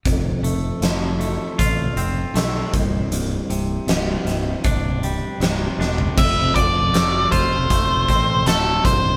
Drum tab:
CC |----------------|----------------|x---------------|
HH |x-x-x-x-x-x-x-x-|x-x-x-x-x-x-x---|--x-x-x-x-x-x-x-|
SD |----o-------o---|----o-o-----o-o-|----o-------o---|
FT |----------------|---------------o|----------------|
BD |o-------o-----o-|--------o-------|o-o---o-o-o---o-|